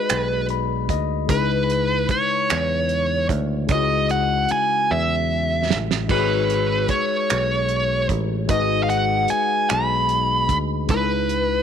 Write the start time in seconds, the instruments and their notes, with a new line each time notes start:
Already playing: tine electric piano G#3 D#4 F#4 G#4 B4 D5 D#5, lead electric guitar B4
0.09 picked electric bass B1, finger snap, closed hi-hat
0.49 tine electric piano B5, closed hi-hat
0.89 picked electric bass D2, tine electric piano D#5, kick, closed hi-hat
1.27 picked electric bass C#2, tine electric piano C#3 G#3 D#4, lead electric guitar B4, kick, closed hi-hat
1.31 tine electric piano E4 B4
1.70 closed hi-hat
2.09 lead electric guitar C#5, muted picked electric bass stroke, kick, closed hi-hat
2.50 picked electric bass E2, finger snap, closed hi-hat
2.89 closed hi-hat
3.29 picked electric bass D2, kick, closed hi-hat
3.67 picked electric bass C#2, tine electric piano C#3 G#3 C#4, kick, closed hi-hat
3.71 tine electric piano E4 F#4, lead electric guitar D#5
4.09 lead electric guitar F#5, closed hi-hat
4.49 lead electric guitar G#5, muted picked electric bass stroke, closed hi-hat
4.91 picked electric bass E2, lead electric guitar E5
5.70 picked electric bass A1, snare
5.91 snare
6.08 picked electric bass G#1, tine electric piano G#3 D#4 F#4 G#4, lead electric guitar B4, kick, crash
6.13 tine electric piano B4 C#5
6.50 closed hi-hat
6.88 lead electric guitar C#5, muted picked electric bass stroke, kick, closed hi-hat
7.30 picked electric bass B1, finger snap, closed hi-hat
7.69 closed hi-hat
8.09 picked electric bass A1, kick, closed hi-hat
8.47 picked electric bass G#1, tine electric piano G#3 D#4 F#4 G#4, lead electric guitar D#5, kick, closed hi-hat
8.52 tine electric piano B4 D#5
8.83 lead electric guitar F5
8.90 lead electric guitar F#5, closed hi-hat
9.28 lead electric guitar G#5, muted picked electric bass stroke, closed hi-hat
9.69 picked electric bass B1, lead electric guitar B5, finger snap, closed hi-hat
10.09 closed hi-hat
10.49 picked electric bass D2, kick, closed hi-hat
10.87 picked electric bass C#2, tine electric piano C#3 G#3 D#4, lead electric guitar B4, kick, closed hi-hat
10.92 tine electric piano E4 B4
11.29 closed hi-hat